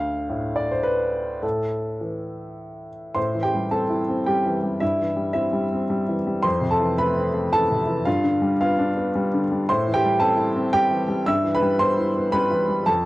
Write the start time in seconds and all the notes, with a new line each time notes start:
Already playing: D2 F5
0.29 A2
0.56 D5
0.71 C5
0.83 B4
1.42 A2 A4
2.01 E3
3.15 A2 C5 C6
3.35 E3
3.43 G4 G5
3.55 G3
3.71 C4 A4 A5
3.90 E4
4.09 C4
4.26 G3 G4 G5
4.46 E3
4.64 G3
4.80 G2 E4 E5
5.00 E3
5.16 G3
5.33 C4 E4 E5
5.53 G3
5.73 C4
5.90 G3
6.09 E3
6.27 G3
6.43 F2 C5 C6
6.61 C3
6.71 A4 A5
6.80 E3
6.98 A3 B4 B5
7.17 C4
7.34 A3
7.53 E3 A4 A5
7.71 C3
7.87 E3
8.05 G2 F4 F5
8.23 D3
8.42 G3
8.61 B3 F4 F5
8.79 D4
8.97 B3
9.15 G3
9.34 D3
9.52 G3
9.69 A2 C5 C6
9.87 E3
9.94 G4 G5
10.04 G3
10.20 C4 A4 A5
10.37 E4
10.56 C4
10.73 G3 G4 G5
10.91 E3
11.08 G3
11.26 G2 E5 E6
11.44 E3
11.55 B4 B5
11.62 G3
11.79 B3 C5 C6
11.99 E4
12.17 B3
12.32 G3 B4 B5
12.51 E3
12.69 G3
12.86 F2 A4 A5